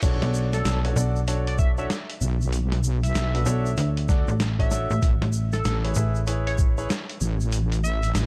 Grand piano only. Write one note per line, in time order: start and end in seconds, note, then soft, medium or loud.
0.03 0.77 D4 loud
0.03 0.77 F#4 medium
0.03 0.77 A4 medium
0.03 0.77 C#5 loud
0.85 0.94 D4 medium
0.85 0.94 F#4 medium
0.85 0.94 A4 medium
0.85 0.94 C#5 medium
0.97 1.19 D4 medium
0.97 1.19 F#4 medium
0.97 1.19 A4 medium
0.97 1.19 D5 medium
1.28 1.74 D4 medium
1.28 1.74 F#4 medium
1.28 1.74 A4 medium
1.28 1.74 C#5 medium
1.78 1.87 D4 loud
1.78 1.87 F#4 medium
1.78 1.87 A4 medium
1.78 1.87 C#5 loud
3.34 3.44 D4 medium
3.34 3.45 F#4 medium
3.34 3.45 A4 medium
3.34 3.45 B4 medium
3.46 3.68 D4 medium
3.46 3.68 F#4 medium
3.46 3.68 A4 medium
3.46 3.68 C#5 loud
4.09 4.31 D4 medium
4.09 4.31 F#4 medium
4.09 4.31 A4 medium
4.09 4.31 D5 loud
4.59 4.69 D4 medium
4.59 4.69 F#4 medium
4.59 4.69 A4 medium
4.59 4.69 C#5 medium
4.71 4.86 D4 medium
4.71 4.86 F#4 medium
4.71 4.86 A4 medium
4.71 4.86 C#5 loud
5.84 5.94 E4 medium
5.84 5.94 G#4 medium
5.84 5.94 B4 medium
5.84 5.94 C#5 medium
5.96 6.18 E4 medium
5.96 6.18 G#4 medium
5.96 6.18 B4 medium
5.96 6.18 E5 medium
6.27 6.73 E4 medium
6.27 6.73 G#4 medium
6.27 6.73 B4 medium
6.27 6.73 C#5 medium
6.78 6.87 E4 loud
6.78 6.87 G#4 medium
6.78 6.87 B4 medium
6.78 6.87 C#5 loud